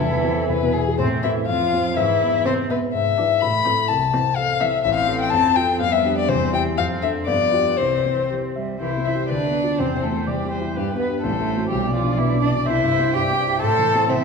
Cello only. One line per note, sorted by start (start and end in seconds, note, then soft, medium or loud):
0.00 0.72 E3 medium
0.99 1.25 C3 medium
1.24 1.48 E3 medium
1.48 1.96 F3 medium
1.96 2.44 E3 medium
2.46 2.54 C3 medium
2.70 2.78 B2 medium
3.19 3.36 E3 medium
3.65 3.83 E3 medium
4.13 4.31 E3 medium
4.61 4.79 E3 medium
4.85 5.34 E3 medium
5.33 5.82 F3 medium
5.81 6.77 G3 medium
6.77 7.24 F3 medium
7.27 7.81 F3 medium
7.79 8.25 E3 soft
8.30 8.38 E3 soft
8.55 8.80 G3 medium
8.81 8.89 E3 medium
9.07 9.15 E4 medium
9.32 9.81 D4 medium
9.80 10.06 C4 medium
10.04 10.30 A3 medium
10.28 10.75 G3 medium
10.76 10.98 G3 medium
10.99 11.07 B3 medium
11.23 11.32 A3 medium
11.30 11.39 G3 medium
11.38 11.71 A3 medium
11.72 11.94 G3 medium
11.94 12.20 F3 medium
12.19 12.41 E3 medium
12.42 12.50 D4 medium
12.67 13.16 E4 medium
13.14 13.61 G4 medium
13.62 14.08 A4 medium
14.09 14.24 C4 medium